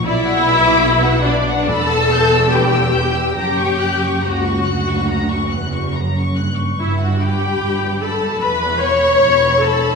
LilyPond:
<<
  \new Staff \with { instrumentName = "Violin section" } { \time 4/4 \key fis \phrygian \tempo 4 = 72 d''16 fis''16 b''16 d'''16 b''16 fis''16 d''16 fis''16 b''16 e'''16 g'''16 e'''16 b''16 e'''16 g'''16 e'''16 | ais''16 cis'''16 fis'''16 cis'''16 ais''16 cis'''16 fis'''16 cis'''16 ais''16 cis'''16 fis'''16 cis'''16 ais''16 cis'''16 fis'''16 cis'''16 | r8 b''4 b''8 b''8 b''4 b''8 | }
  \new Staff \with { instrumentName = "Violin section" } { \time 4/4 \key fis \phrygian e''4. d''8 a''4 g''4 | g''4 fis''2 r4 | e''16 fis''16 g''4 a''8 b''8 cis'''4 a''8 | }
  \new Staff \with { instrumentName = "Viola section" } { \time 4/4 \key fis \phrygian e'4. d'8 a'4 g'4 | g'4 fis'2 r4 | e'16 fis'16 g'4 a'8 b'8 cis''4 a'8 | }
  \new Staff \with { instrumentName = "Cello section" } { \clef bass \time 4/4 \key fis \phrygian b,2 e,2 | fis,4 cis,8 d,4 e,8 fis,8 g,8 | g,4 g,4 e,4 e,4 | }
  \new Staff \with { instrumentName = "Double bass section" } { \clef bass \time 4/4 \key fis \phrygian b,,2 e,,2 | fis,,2.~ fis,,8. r16 | g,,4 g,,4 e,,4 e,,4 | }
>>